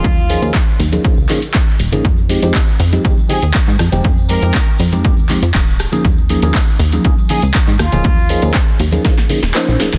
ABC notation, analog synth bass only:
X:1
M:4/4
L:1/16
Q:1/4=120
K:Ebmix
V:1 name="Analog synth bass" clef=bass
E,,3 E,, z2 E,,2 z D,, z4 E,,, B,,, | F,,3 F,, z2 F,,2 E,, z2 E,, z A,, F,, F,,, | F,,3 F,, z2 F,,3 E,,2 F,, E,,,3 z | E,,3 E,, z2 E,,2 D,, z2 D,, z A,, E,, E,,, |
E,,3 E,, z2 E,,2 z3 E,,, z B,,, z E,,, |]